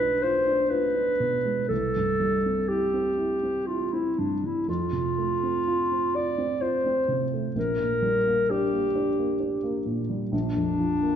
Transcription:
Already playing: B1 B2 G#3 F4 B4
0.00 D4
0.22 F4 C5
0.46 D4
0.70 F4 B4
0.95 D4
1.20 B2
1.45 G#3
1.69 C2 A4
1.96 G2
2.20 G3
2.46 C4
2.69 E4 G4
2.94 C4
3.18 E4
3.43 C4
3.67 E4 F4
3.93 C4 E4
4.18 G2 D4
4.43 G3 E4
4.68 F2 F4
4.92 C3
5.18 A3
5.43 C4
5.67 F4
5.92 C4
6.16 F4 D5
6.38 C4
6.62 F4 C5
6.86 C4
7.08 C3
7.34 A3
7.55 A#1 A#4
7.79 A#2
8.02 G3
8.27 A#3
8.50 D4 G4
8.72 A#3
8.95 D4
9.18 A#3
9.40 D4
9.63 A#3
9.86 A#2
10.10 G3
10.32 A#1 D4
10.56 F2
10.79 F3
11.02 A#3

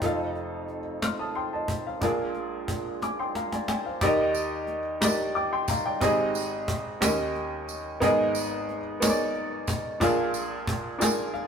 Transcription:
Already playing: C4 D#4 D5 G5
0.02 F1 F2 A3 D#4 F4 A4 C5 F5, cajon bass
0.35 cajon slap
0.68 cajon slap
1.02 C6 F6, cajon slap
1.19 A5 D#6
1.35 G5 C6, cajon slap
1.53 D#5 A5
1.68 cajon bass
1.87 C5 F5
2.01 A#1 A#2 G#3 A#3 D4 F4 G#4 A#4 F5, cajon bass
2.35 cajon slap
2.68 cajon bass
3.02 G#5 D6, cajon slap
3.19 G5 C6
3.35 F5 A#5, cajon slap
3.52 D5 G#5, cajon slap
3.68 D5 G5 G#5, cajon slap
3.86 C5 F5
4.01 D#2 D#3 D#4 G4 A#4 D5 D#5, cajon bass, tambourine
4.34 cajon slap, tambourine
4.67 cajon slap
5.01 D4 D#4 G4 A#4 D5, cajon slap, tambourine
5.35 G5 D6, cajon slap
5.53 G5 C6
5.68 F5 A#5, cajon bass, tambourine
5.86 D5 G5
6.01 G#1 G#2 C4 D#4 G4 G#4 D#5, cajon bass, tambourine
6.34 cajon slap, tambourine
6.68 cajon bass
7.01 D#2 D#3 C#4 D#4 G4 A#4 D#5, cajon slap, tambourine
7.35 cajon slap
7.68 cajon slap, tambourine
8.00 G#1 G#2 B3 D#4 G#4 A#4 D#5, cajon bass, tambourine
8.35 cajon slap, tambourine
8.69 cajon slap
9.00 B3 D#4 G#4 A#4 C#5, cajon slap, tambourine
9.10 D5
9.35 cajon slap
9.67 cajon bass, tambourine
10.00 A#1 A#2 D4 F4 G#4 A#4 F5, cajon bass, tambourine
10.34 cajon slap, tambourine
10.67 cajon bass
10.99 D4 F4 G#4 A#4 G#5, cajon slap, tambourine
11.34 F5, cajon slap

